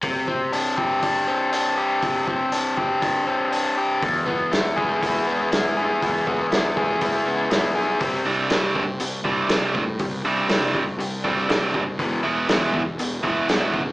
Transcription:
0.03 overdriven electric guitar C3, kick, open hi-hat
0.28 overdriven electric guitar C4, kick
0.52 overdriven electric guitar D4, open hi-hat
0.77 overdriven electric guitar G4, kick
1.03 overdriven electric guitar D4, kick, open hi-hat
1.28 overdriven electric guitar C4
1.52 overdriven electric guitar D4, open hi-hat
1.78 overdriven electric guitar G4
2.02 overdriven electric guitar C3, kick, open hi-hat
2.27 overdriven electric guitar C4, kick
2.52 overdriven electric guitar D4, open hi-hat
2.77 overdriven electric guitar G4, kick
3.02 overdriven electric guitar D4, kick, open hi-hat
3.27 overdriven electric guitar C4
3.52 overdriven electric guitar D4, open hi-hat
3.77 overdriven electric guitar G4
4.02 fingered electric bass E1, overdriven electric guitar E2, kick, open hi-hat
4.26 overdriven electric guitar B3, kick
4.52 fingered electric bass E1, overdriven electric guitar E4, snare, open hi-hat
4.76 fingered electric bass E1, overdriven electric guitar G#4, kick
5.01 fingered electric bass E1, overdriven electric guitar E4, kick, open hi-hat
5.27 fingered electric bass E1, overdriven electric guitar B3
5.52 fingered electric bass G#1, overdriven electric guitar E4, snare, open hi-hat
5.77 overdriven electric guitar G#4
6.02 fingered electric bass E1, overdriven electric guitar E2, kick, open hi-hat
6.26 fingered electric bass E1, overdriven electric guitar B3, kick
6.51 fingered electric bass E1, overdriven electric guitar E4, snare, open hi-hat
6.77 fingered electric bass E1, overdriven electric guitar G#4, kick
7.01 fingered electric bass E1, overdriven electric guitar E4, kick, open hi-hat
7.26 fingered electric bass C#2, overdriven electric guitar B3
7.51 fingered electric bass E1, overdriven electric guitar E4, snare, open hi-hat
7.75 fingered electric bass B1, overdriven electric guitar G#4
8.00 fingered electric bass C2, overdriven electric guitar C3 G3 C4, kick, open hi-hat
8.25 fingered electric bass C2, overdriven electric guitar C3 G3 C4 D4
8.50 overdriven electric guitar C3 G3 C4 D4, fingered electric bass C3, snare, open hi-hat
8.75 overdriven electric guitar C3 G3, kick
9.00 fingered electric bass C2, overdriven electric guitar C3 G3, open hi-hat
9.24 fingered electric bass C2, overdriven electric guitar C3 G3 C4 D4, kick
9.49 fingered electric bass C2, overdriven electric guitar C3 G3 C4 D4, snare, open hi-hat
9.74 fingered electric bass A2, overdriven electric guitar C3 G3, kick
9.99 fingered electric bass C2, overdriven electric guitar C3 G3, kick, open hi-hat
10.25 fingered electric bass C2, overdriven electric guitar C3 G3 C4 D4
10.49 fingered electric bass C2, overdriven electric guitar C3 G3 C4 D4, snare, open hi-hat
10.74 overdriven electric guitar C3 G3, kick
10.99 fingered electric bass C2, overdriven electric guitar C3 G3, open hi-hat
11.24 overdriven electric guitar C3 G3 C4 D4, kick
11.49 fingered electric bass C2, overdriven electric guitar C3 G3 C4 D4, snare, open hi-hat
11.74 fingered electric bass C2, overdriven electric guitar C3 G3, kick
11.99 fingered electric bass E1, overdriven electric guitar E2 B2 E3, kick, open hi-hat
12.23 fingered electric bass E1, overdriven electric guitar E2 B2 E3 G#3 B3 E4
12.48 fingered electric bass E2, overdriven electric guitar E2 B2 E3 G#3 B3 E4, snare, open hi-hat
12.74 overdriven electric guitar E2 B2, kick
12.98 fingered electric bass E1, overdriven electric guitar E2 B2, open hi-hat
13.23 fingered electric bass E1, overdriven electric guitar E2 B2 E3 G#3 B3 E4, kick
13.48 fingered electric bass E1, overdriven electric guitar E2 B2 E3 G#3 B3 E4, snare, open hi-hat
13.74 fingered electric bass C#2, overdriven electric guitar E2 B2, kick

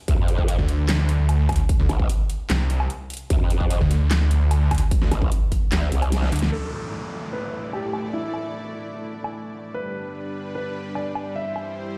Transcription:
0.08 wobble bass D2, kick, closed hi-hat
0.18 wobble bass F2
0.28 closed hi-hat
0.38 kick
0.48 closed hi-hat
0.59 detuned saw bass D2
0.69 closed hi-hat
0.89 snare, clap, closed hi-hat
1.09 closed hi-hat
1.19 detuned saw bass D2
1.29 closed hi-hat, low woodblock
1.49 kick, closed hi-hat, low woodblock
1.52 closed hi-hat
1.56 closed hi-hat
1.69 kick, closed hi-hat
1.79 detuned saw bass D2
1.89 wobble bass A1, closed hi-hat, low woodblock
2.00 kick
2.09 closed hi-hat
2.30 closed hi-hat
2.50 detuned saw bass C2, snare, clap, closed hi-hat
2.70 detuned saw bass C2, closed hi-hat
2.80 low woodblock
2.90 closed hi-hat
3.10 closed hi-hat
3.14 closed hi-hat
3.17 closed hi-hat
3.30 wobble bass D2, kick, closed hi-hat
3.41 wobble bass F2
3.50 closed hi-hat
3.61 kick
3.71 closed hi-hat
3.81 detuned saw bass D2
3.91 closed hi-hat
4.11 snare, clap, closed hi-hat
4.31 closed hi-hat
4.41 detuned saw bass D2
4.51 closed hi-hat, low woodblock
4.71 kick, closed hi-hat, low woodblock
4.75 closed hi-hat
4.78 closed hi-hat
4.91 kick, closed hi-hat
5.02 detuned saw bass D2, snare
5.12 wobble bass A1, closed hi-hat, low woodblock
5.22 kick
5.32 closed hi-hat
5.52 kick, closed hi-hat
5.72 wobble bass D2, snare, clap, closed hi-hat
5.92 wobble bass C2, closed hi-hat
6.02 closed hi-hat, low woodblock
6.12 snare, closed hi-hat
6.22 snare
6.32 detuned saw bass D2, closed hi-hat
6.36 closed hi-hat
6.39 snare, closed hi-hat
6.52 supersaw synth A3 E4 D5, grand piano A4, closed hi-hat, downlifter
6.73 closed hi-hat
6.93 closed hi-hat
7.13 closed hi-hat
7.33 grand piano B4
7.53 closed hi-hat
7.73 grand piano G4, low woodblock
7.93 closed hi-hat, low woodblock
7.97 closed hi-hat
8.00 closed hi-hat
8.13 grand piano E4, closed hi-hat
8.34 closed hi-hat, low woodblock
8.54 closed hi-hat
8.74 closed hi-hat
8.94 closed hi-hat
9.14 closed hi-hat
9.24 low woodblock
9.34 closed hi-hat
9.54 closed hi-hat
9.58 closed hi-hat
9.61 closed hi-hat
9.74 supersaw synth G3 D4 B4, grand piano B4, closed hi-hat
9.95 closed hi-hat
10.15 closed hi-hat
10.35 closed hi-hat
10.55 grand piano B4, closed hi-hat
10.75 closed hi-hat
10.95 grand piano D5, closed hi-hat, low woodblock
11.15 closed hi-hat, low woodblock
11.19 closed hi-hat
11.22 closed hi-hat
11.36 supersaw synth E4 C5, grand piano E5, closed hi-hat
11.56 closed hi-hat, low woodblock
11.76 closed hi-hat

